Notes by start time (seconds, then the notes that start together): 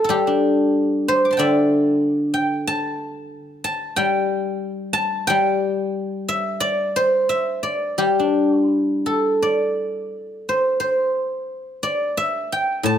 Already playing: C5 E5
0.04 A4
0.09 G3 G4
0.27 D4
1.08 C5
1.25 D6
1.31 A5 C6
1.37 D3 D5 E5 G5
2.34 G5
2.67 A5
3.64 A5
3.96 G3 G5
4.93 A5
5.27 G3 G5
6.28 E5
6.60 D5
6.96 C5
7.29 E5
7.63 D5
7.98 G3 G4
8.19 D4
8.68 E4
9.06 A4
9.42 D5
10.49 C5
10.80 C5
11.83 D5
12.17 E5
12.52 G5
12.83 A2 A5